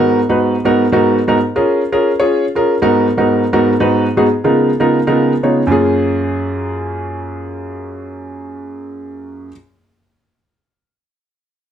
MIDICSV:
0, 0, Header, 1, 2, 480
1, 0, Start_track
1, 0, Key_signature, 6, "major"
1, 0, Tempo, 359712
1, 1831, Time_signature, 4, 2, 24, 8
1, 15629, End_track
2, 0, Start_track
2, 0, Title_t, "Grand piano"
2, 0, Program_c, 0, 0
2, 0, Note_on_c, 0, 44, 84
2, 0, Note_on_c, 0, 59, 82
2, 0, Note_on_c, 0, 63, 80
2, 0, Note_on_c, 0, 66, 88
2, 0, Note_on_c, 0, 70, 106
2, 248, Note_off_c, 0, 44, 0
2, 249, Note_off_c, 0, 63, 0
2, 250, Note_off_c, 0, 66, 0
2, 251, Note_off_c, 0, 59, 0
2, 253, Note_off_c, 0, 70, 0
2, 391, Note_on_c, 0, 63, 78
2, 393, Note_on_c, 0, 44, 70
2, 394, Note_on_c, 0, 66, 66
2, 395, Note_on_c, 0, 59, 70
2, 398, Note_on_c, 0, 71, 84
2, 727, Note_off_c, 0, 63, 0
2, 728, Note_off_c, 0, 44, 0
2, 729, Note_off_c, 0, 59, 0
2, 729, Note_off_c, 0, 66, 0
2, 731, Note_off_c, 0, 71, 0
2, 862, Note_on_c, 0, 44, 81
2, 870, Note_on_c, 0, 59, 87
2, 870, Note_on_c, 0, 66, 80
2, 872, Note_on_c, 0, 63, 79
2, 874, Note_on_c, 0, 70, 98
2, 1119, Note_off_c, 0, 44, 0
2, 1123, Note_off_c, 0, 59, 0
2, 1123, Note_off_c, 0, 66, 0
2, 1124, Note_off_c, 0, 63, 0
2, 1125, Note_off_c, 0, 70, 0
2, 1228, Note_on_c, 0, 44, 92
2, 1234, Note_on_c, 0, 63, 78
2, 1235, Note_on_c, 0, 59, 86
2, 1241, Note_on_c, 0, 66, 81
2, 1244, Note_on_c, 0, 70, 94
2, 1566, Note_off_c, 0, 44, 0
2, 1569, Note_off_c, 0, 59, 0
2, 1569, Note_off_c, 0, 63, 0
2, 1572, Note_off_c, 0, 66, 0
2, 1574, Note_off_c, 0, 70, 0
2, 1702, Note_on_c, 0, 66, 68
2, 1703, Note_on_c, 0, 44, 88
2, 1704, Note_on_c, 0, 59, 73
2, 1709, Note_on_c, 0, 63, 76
2, 1716, Note_on_c, 0, 70, 92
2, 1827, Note_off_c, 0, 44, 0
2, 1827, Note_off_c, 0, 66, 0
2, 1828, Note_off_c, 0, 59, 0
2, 1830, Note_off_c, 0, 63, 0
2, 1834, Note_off_c, 0, 70, 0
2, 2078, Note_on_c, 0, 65, 75
2, 2080, Note_on_c, 0, 68, 72
2, 2081, Note_on_c, 0, 61, 89
2, 2081, Note_on_c, 0, 70, 89
2, 2411, Note_off_c, 0, 65, 0
2, 2412, Note_off_c, 0, 61, 0
2, 2412, Note_off_c, 0, 68, 0
2, 2412, Note_off_c, 0, 70, 0
2, 2565, Note_on_c, 0, 65, 69
2, 2569, Note_on_c, 0, 68, 71
2, 2569, Note_on_c, 0, 70, 93
2, 2570, Note_on_c, 0, 61, 86
2, 2811, Note_off_c, 0, 65, 0
2, 2812, Note_off_c, 0, 68, 0
2, 2812, Note_off_c, 0, 70, 0
2, 2813, Note_off_c, 0, 61, 0
2, 2930, Note_on_c, 0, 73, 103
2, 2931, Note_on_c, 0, 61, 84
2, 2931, Note_on_c, 0, 65, 78
2, 2934, Note_on_c, 0, 68, 81
2, 3257, Note_off_c, 0, 73, 0
2, 3258, Note_off_c, 0, 61, 0
2, 3258, Note_off_c, 0, 65, 0
2, 3259, Note_off_c, 0, 68, 0
2, 3408, Note_on_c, 0, 65, 70
2, 3416, Note_on_c, 0, 68, 65
2, 3418, Note_on_c, 0, 61, 74
2, 3418, Note_on_c, 0, 70, 88
2, 3652, Note_off_c, 0, 65, 0
2, 3656, Note_off_c, 0, 68, 0
2, 3657, Note_off_c, 0, 61, 0
2, 3657, Note_off_c, 0, 70, 0
2, 3760, Note_on_c, 0, 59, 84
2, 3761, Note_on_c, 0, 44, 87
2, 3763, Note_on_c, 0, 63, 84
2, 3767, Note_on_c, 0, 66, 81
2, 3769, Note_on_c, 0, 70, 96
2, 4092, Note_off_c, 0, 59, 0
2, 4093, Note_off_c, 0, 44, 0
2, 4094, Note_off_c, 0, 63, 0
2, 4096, Note_off_c, 0, 66, 0
2, 4097, Note_off_c, 0, 70, 0
2, 4235, Note_on_c, 0, 66, 69
2, 4236, Note_on_c, 0, 44, 78
2, 4240, Note_on_c, 0, 59, 70
2, 4242, Note_on_c, 0, 70, 88
2, 4243, Note_on_c, 0, 63, 76
2, 4570, Note_off_c, 0, 66, 0
2, 4571, Note_off_c, 0, 44, 0
2, 4572, Note_off_c, 0, 59, 0
2, 4573, Note_off_c, 0, 70, 0
2, 4574, Note_off_c, 0, 63, 0
2, 4710, Note_on_c, 0, 44, 94
2, 4710, Note_on_c, 0, 59, 83
2, 4712, Note_on_c, 0, 70, 99
2, 4714, Note_on_c, 0, 66, 81
2, 4720, Note_on_c, 0, 63, 77
2, 4964, Note_off_c, 0, 44, 0
2, 4964, Note_off_c, 0, 59, 0
2, 4965, Note_off_c, 0, 70, 0
2, 4966, Note_off_c, 0, 66, 0
2, 4969, Note_off_c, 0, 63, 0
2, 5073, Note_on_c, 0, 44, 86
2, 5073, Note_on_c, 0, 63, 84
2, 5073, Note_on_c, 0, 66, 83
2, 5076, Note_on_c, 0, 71, 97
2, 5080, Note_on_c, 0, 59, 77
2, 5409, Note_off_c, 0, 44, 0
2, 5409, Note_off_c, 0, 66, 0
2, 5410, Note_off_c, 0, 63, 0
2, 5411, Note_off_c, 0, 71, 0
2, 5413, Note_off_c, 0, 59, 0
2, 5562, Note_on_c, 0, 44, 83
2, 5566, Note_on_c, 0, 59, 77
2, 5568, Note_on_c, 0, 66, 81
2, 5568, Note_on_c, 0, 68, 88
2, 5570, Note_on_c, 0, 63, 72
2, 5678, Note_off_c, 0, 44, 0
2, 5680, Note_off_c, 0, 59, 0
2, 5681, Note_off_c, 0, 66, 0
2, 5681, Note_off_c, 0, 68, 0
2, 5682, Note_off_c, 0, 63, 0
2, 5925, Note_on_c, 0, 49, 77
2, 5931, Note_on_c, 0, 70, 80
2, 5932, Note_on_c, 0, 59, 70
2, 5932, Note_on_c, 0, 65, 76
2, 5933, Note_on_c, 0, 56, 66
2, 5935, Note_on_c, 0, 63, 74
2, 6256, Note_off_c, 0, 49, 0
2, 6259, Note_off_c, 0, 59, 0
2, 6259, Note_off_c, 0, 65, 0
2, 6259, Note_off_c, 0, 70, 0
2, 6260, Note_off_c, 0, 56, 0
2, 6261, Note_off_c, 0, 63, 0
2, 6404, Note_on_c, 0, 63, 77
2, 6407, Note_on_c, 0, 49, 75
2, 6408, Note_on_c, 0, 56, 64
2, 6409, Note_on_c, 0, 59, 66
2, 6411, Note_on_c, 0, 70, 85
2, 6414, Note_on_c, 0, 65, 76
2, 6651, Note_off_c, 0, 63, 0
2, 6653, Note_off_c, 0, 49, 0
2, 6653, Note_off_c, 0, 56, 0
2, 6654, Note_off_c, 0, 59, 0
2, 6655, Note_off_c, 0, 70, 0
2, 6656, Note_off_c, 0, 65, 0
2, 6766, Note_on_c, 0, 63, 73
2, 6770, Note_on_c, 0, 70, 93
2, 6771, Note_on_c, 0, 49, 84
2, 6771, Note_on_c, 0, 56, 71
2, 6774, Note_on_c, 0, 65, 75
2, 6778, Note_on_c, 0, 59, 76
2, 7096, Note_off_c, 0, 63, 0
2, 7098, Note_off_c, 0, 70, 0
2, 7099, Note_off_c, 0, 49, 0
2, 7099, Note_off_c, 0, 56, 0
2, 7100, Note_off_c, 0, 65, 0
2, 7102, Note_off_c, 0, 59, 0
2, 7243, Note_on_c, 0, 49, 64
2, 7248, Note_on_c, 0, 59, 61
2, 7249, Note_on_c, 0, 65, 67
2, 7250, Note_on_c, 0, 56, 59
2, 7253, Note_on_c, 0, 73, 71
2, 7254, Note_on_c, 0, 63, 64
2, 7491, Note_off_c, 0, 49, 0
2, 7493, Note_off_c, 0, 59, 0
2, 7494, Note_off_c, 0, 65, 0
2, 7495, Note_off_c, 0, 56, 0
2, 7496, Note_off_c, 0, 63, 0
2, 7496, Note_off_c, 0, 73, 0
2, 7564, Note_on_c, 0, 42, 85
2, 7579, Note_on_c, 0, 58, 75
2, 7598, Note_on_c, 0, 61, 75
2, 7607, Note_on_c, 0, 65, 76
2, 7627, Note_on_c, 0, 68, 91
2, 12644, Note_off_c, 0, 42, 0
2, 12659, Note_off_c, 0, 58, 0
2, 12678, Note_off_c, 0, 61, 0
2, 12687, Note_off_c, 0, 65, 0
2, 12707, Note_off_c, 0, 68, 0
2, 15629, End_track
0, 0, End_of_file